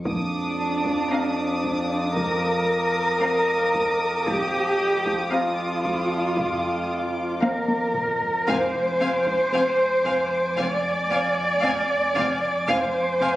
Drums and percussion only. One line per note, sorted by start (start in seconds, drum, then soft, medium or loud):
0.05 taiko medium
0.85 taiko medium
1.64 taiko medium
2.16 taiko medium
3.74 taiko medium
4.27 taiko medium
5.06 taiko medium
5.85 taiko medium
6.37 taiko medium
7.42 taiko high medium
7.68 taiko high medium
7.94 taiko low-mid medium
8.21 taiko low medium
8.48 taiko medium
9.26 taiko medium
10.05 taiko medium
10.58 taiko medium
12.16 taiko medium
12.68 taiko medium